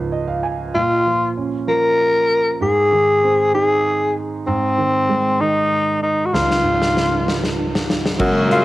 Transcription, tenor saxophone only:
0.75 1.33 F4 medium
1.69 2.57 A#4 medium
2.62 3.50 G#4 medium
3.54 4.20 G#4 medium
4.47 5.42 C4 medium
5.41 6.03 D#4 medium
6.03 6.28 D#4 medium
6.26 6.35 F#4 soft
6.34 7.58 F4 medium
8.53 8.65 F4 medium

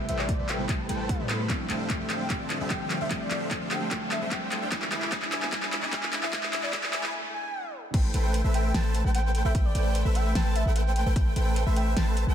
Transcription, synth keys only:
0.00 0.58 C3 loud
0.00 0.58 G3 medium
0.00 0.59 A3 medium
0.00 0.59 B3 medium
0.00 0.60 E4 loud
0.00 1.51 A4 medium
0.58 0.87 C3 medium
0.58 0.87 G3 medium
0.58 0.87 A3 medium
0.58 0.87 B3 medium
0.58 0.88 E4 loud
0.88 1.06 C3 medium
0.88 1.07 G3 medium
0.88 1.07 A3 medium
0.88 1.07 B3 medium
0.88 1.07 E4 medium
1.08 1.26 C3 medium
1.08 1.26 G3 medium
1.08 1.26 A3 medium
1.08 1.27 B3 medium
1.08 1.27 E4 loud
1.28 1.47 C3 medium
1.28 1.47 G3 medium
1.28 1.47 A3 medium
1.28 1.47 B3 medium
1.28 1.48 E4 medium
1.47 2.17 F3 medium
1.47 2.17 G3 medium
1.47 2.18 A3 medium
1.47 2.18 C4 medium
1.51 2.19 E4 loud
2.19 2.38 F3 medium
2.19 2.38 G3 medium
2.19 2.39 A3 medium
2.19 2.39 C4 medium
2.19 2.39 E4 medium
2.59 3.07 F3 medium
2.59 3.08 G3 medium
2.59 3.08 A3 medium
2.59 3.09 C4 medium
2.59 3.09 G4 medium
3.09 3.78 F3 medium
3.09 3.78 G3 medium
3.09 3.79 A3 medium
3.09 3.79 C4 medium
3.09 3.80 E4 medium
3.79 4.68 F3 medium
3.79 4.69 G3 medium
3.79 4.69 A3 medium
3.79 4.70 C4 medium
4.70 5.39 E3 loud
4.70 5.39 G#3 medium
4.70 5.40 B3 medium
4.70 5.40 D4 medium
4.74 5.41 E4 loud
5.41 5.60 E3 medium
5.41 5.61 G#3 medium
5.41 5.61 B3 medium
5.41 5.61 D4 medium
5.41 5.61 E4 medium
5.81 6.30 E3 medium
5.81 6.30 G#3 medium
5.81 6.31 B3 medium
5.81 6.31 D4 medium
5.85 6.32 E4 medium
6.31 7.00 E3 medium
6.31 7.01 G#3 medium
6.31 7.01 B3 medium
6.31 7.02 D4 medium
6.31 7.02 E4 loud
7.02 7.12 E3 medium
7.02 7.13 G#3 medium
7.02 7.13 B3 medium
7.02 7.14 D4 medium
7.06 7.14 E4 loud

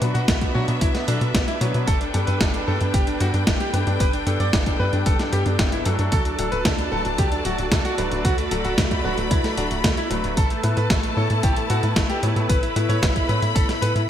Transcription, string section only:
0.00 6.08 D4 medium
0.00 1.84 F#4 medium
0.00 6.08 B4 medium
0.00 1.85 E5 medium
1.88 14.10 A4 medium
1.88 6.08 G5 medium
6.12 10.33 F#4 medium
6.12 10.33 D5 medium
6.12 8.23 A5 medium
8.25 10.35 B5 medium
10.37 14.10 E4 medium
10.37 14.10 B4 medium
10.37 12.47 A5 medium
12.50 14.10 B5 medium

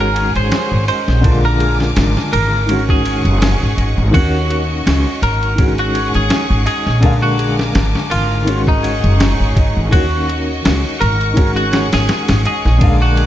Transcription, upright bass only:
0.00 0.32 G#1 medium
0.36 0.50 G#1 medium
0.72 0.86 G#1 loud
1.08 1.94 A#1 medium
1.97 2.14 G#1 loud
2.33 3.21 G#1 medium
3.25 3.56 F#1 loud
3.61 3.76 G#1 medium
3.77 3.95 G#1 medium
3.98 4.12 G#1 loud
4.15 4.83 D#2 medium
4.87 5.03 C#2 loud
5.22 6.10 G#1 medium
6.15 6.29 G#1 medium
6.50 6.65 G#1 loud
6.86 7.72 A#1 medium
7.76 7.93 G#1 loud
8.12 9.00 G#1 loud
9.04 9.35 F#1 loud
9.40 9.54 G#1 medium
9.57 9.74 G#1 medium
9.77 9.91 G#1 loud
9.93 10.62 D#2 loud
10.65 10.82 C#2 loud
11.01 11.89 G#1 medium
11.94 12.07 G#1 medium
12.29 12.43 G#1 loud
12.65 13.26 A#1 medium

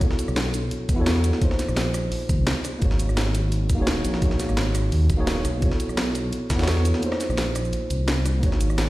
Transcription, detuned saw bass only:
0.28 0.70 B1 medium
0.89 1.05 E2 loud
1.06 1.32 E2 medium
1.68 2.10 A#1 medium
2.29 2.38 D#2 medium
2.39 2.54 C2 loud
2.82 3.77 G#1 loud
3.79 4.03 D#1 medium
4.05 4.47 A#1 loud
4.49 4.91 G#1 medium
4.92 5.08 D#2 medium
5.10 5.44 D#1 medium
5.45 5.70 B1 medium
5.89 6.31 B1 medium
6.50 6.66 E2 loud
6.67 6.93 E2 medium
7.29 7.72 A#1 medium
7.91 8.42 C2 medium
8.43 8.89 G#1 loud

